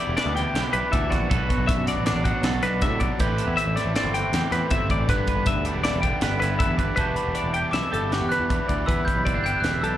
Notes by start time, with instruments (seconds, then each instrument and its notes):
Already playing: overdriven electric guitar E3 G4, clean electric guitar E3 G3 G4 D5
0.00 overdriven electric guitar B3 E4
0.07 picked electric bass E1
0.17 overdriven electric guitar E3 B3 E4 G4, clean electric guitar D4 D5, snare, closed hi-hat
0.26 picked electric bass D2
0.35 clean electric guitar B2 G5, overdriven electric guitar E4 G4, snare, closed hi-hat
0.39 overdriven electric guitar B3
0.55 picked electric bass B1, overdriven electric guitar E3 B3 E4 G4, clean electric guitar G4, snare, closed hi-hat
0.72 picked electric bass B1, clean electric guitar D4 B4, overdriven electric guitar E4 G4, closed hi-hat
0.77 overdriven electric guitar B3
0.91 picked electric bass D2, clean electric guitar E3 A4 E5, overdriven electric guitar E3 B3 E4, kick, closed hi-hat
0.95 overdriven electric guitar G4
1.10 picked electric bass A#1, clean electric guitar F#4 D5, kick, snare, closed hi-hat
1.29 picked electric bass B1, clean electric guitar B2 A4 B4, overdriven electric guitar B2 F#3 B3 D4 F#4, kick, closed hi-hat
1.49 clean electric guitar F#4, kick, closed hi-hat
1.58 picked electric bass B1
1.67 clean electric guitar E5, kick, snare, closed hi-hat
1.77 picked electric bass F#2
1.85 clean electric guitar B3 D5, overdriven electric guitar D4 F#4, snare, closed hi-hat
1.90 overdriven electric guitar B3
1.96 picked electric bass A1
2.06 overdriven electric guitar F#3 B3 D4, clean electric guitar D4 D5, snare, closed hi-hat
2.10 picked electric bass A1, overdriven electric guitar F#4
2.24 clean electric guitar F#3 F#5, overdriven electric guitar D4 F#4, kick, closed hi-hat
2.28 overdriven electric guitar B3
2.42 picked electric bass B1, overdriven electric guitar B2 F#3, clean electric guitar A4, snare, closed hi-hat
2.46 overdriven electric guitar B3 D4 F#4
2.62 picked electric bass B1, clean electric guitar D4 B4, overdriven electric guitar F#4, snare, closed hi-hat
2.66 overdriven electric guitar B3 D4
2.81 picked electric bass A2, overdriven electric guitar B2 F#3 B3 D4, clean electric guitar C3 E5, kick, snare, closed hi-hat
2.86 overdriven electric guitar F#4
3.00 picked electric bass B1, clean electric guitar B2 D5, kick, closed hi-hat
3.19 picked electric bass A1, clean electric guitar A2 G4 B4, overdriven electric guitar A2 E3 A3 C4 E4, kick, closed hi-hat
3.38 clean electric guitar D4, closed hi-hat
3.47 picked electric bass E2, clean electric guitar E4
3.57 clean electric guitar E5, closed hi-hat
3.66 picked electric bass A1
3.76 clean electric guitar A3 D5, overdriven electric guitar A3 C4 E4, snare, closed hi-hat
3.86 picked electric bass A1
3.94 overdriven electric guitar E3 A3 C4, clean electric guitar C4 D5, snare, closed hi-hat
3.98 overdriven electric guitar E4
4.04 picked electric bass G1
4.14 clean electric guitar E3 G5, overdriven electric guitar A3 C4 E4, closed hi-hat
4.32 picked electric bass E2, overdriven electric guitar A2 E3 A3 C4, clean electric guitar G4, snare, closed hi-hat
4.36 overdriven electric guitar E4
4.50 picked electric bass E2, overdriven electric guitar A3 C4 E4, clean electric guitar C4 B4, snare, closed hi-hat
4.68 picked electric bass G1, overdriven electric guitar A2 E3 A3 C4 E4, clean electric guitar B2 E5, kick, closed hi-hat
4.89 picked electric bass A1, clean electric guitar A2 D5, kick, closed hi-hat
5.07 picked electric bass G1, overdriven electric guitar G2 D3 G3 B3 D4, clean electric guitar G2 B4, kick, closed hi-hat
5.27 clean electric guitar B4, kick, closed hi-hat
5.35 picked electric bass G1
5.46 clean electric guitar E5, kick, snare, closed hi-hat
5.55 picked electric bass D2
5.64 clean electric guitar G3 D5, overdriven electric guitar G3 B3 D4, closed hi-hat
5.74 picked electric bass E1
5.82 overdriven electric guitar D3 G3 B3 D4, clean electric guitar E4 D5, snare, closed hi-hat
5.94 picked electric bass E1
6.00 clean electric guitar D3 G5, overdriven electric guitar G3 B3 D4, kick, closed hi-hat
6.20 picked electric bass G1, overdriven electric guitar G2 D3 G3 B3 D4, clean electric guitar B4, snare, closed hi-hat
6.38 picked electric bass G1, overdriven electric guitar B3 D4, clean electric guitar E4 B4, closed hi-hat
6.42 overdriven electric guitar G3, snare
6.59 picked electric bass E2, overdriven electric guitar G2 D3 G3 B3 D4, clean electric guitar G2 B4 E5, kick, closed hi-hat
6.77 picked electric bass G1, clean electric guitar B4 D5, kick, closed hi-hat
6.95 picked electric bass E1, overdriven electric guitar E3 G3 B3 E4, clean electric guitar E3 G3 B4, glockenspiel A5, kick, closed hi-hat
7.00 clean electric guitar D4 F#4 G4
7.16 clean electric guitar G3, overdriven electric guitar G3 B3 E4, glockenspiel B5, closed hi-hat
7.26 picked electric bass E1
7.35 clean electric guitar D4 D5, closed hi-hat
7.44 picked electric bass E1
7.53 overdriven electric guitar B3 E4, clean electric guitar G4 G5, closed hi-hat
7.57 overdriven electric guitar G3
7.71 picked electric bass B1, clean electric guitar B2 E5, overdriven electric guitar E3 G3 B3 E4, glockenspiel D6, snare, closed hi-hat
7.92 picked electric bass G1, overdriven electric guitar B3 E4, clean electric guitar G4 A4, closed hi-hat
7.96 overdriven electric guitar G3
8.11 overdriven electric guitar E3 G3 B3 E4, clean electric guitar F#4 G4, glockenspiel D6, snare, closed hi-hat
8.21 picked electric bass E2
8.29 overdriven electric guitar B3 E4, clean electric guitar D4 B4, glockenspiel F#6, snare, closed hi-hat
8.33 overdriven electric guitar G3
8.40 picked electric bass E2
8.49 overdriven electric guitar E3 G3 B3 E4, clean electric guitar E3, kick, closed hi-hat
8.67 picked electric bass D2, clean electric guitar G3 D5, overdriven electric guitar G3 B3 E4, kick, closed hi-hat
8.86 picked electric bass E2, overdriven electric guitar E3 G3 B3 E4, clean electric guitar E3 B4, glockenspiel E6, kick, closed hi-hat
9.05 clean electric guitar G3, overdriven electric guitar B3 E4, glockenspiel G6, kick, closed hi-hat
9.10 overdriven electric guitar G3
9.16 picked electric bass B1
9.25 clean electric guitar C4 D5, kick, closed hi-hat
9.34 picked electric bass G1, clean electric guitar D4
9.44 overdriven electric guitar B3 E4, clean electric guitar G4 G5, glockenspiel G6, closed hi-hat
9.48 overdriven electric guitar G3
9.60 picked electric bass E1, clean electric guitar B2, overdriven electric guitar E3, glockenspiel F#6, closed hi-hat
9.64 overdriven electric guitar G3 B3 E4, clean electric guitar E5, snare
9.82 picked electric bass B1, overdriven electric guitar E4, clean electric guitar G4 A4, glockenspiel E6, closed hi-hat
9.86 overdriven electric guitar G3 B3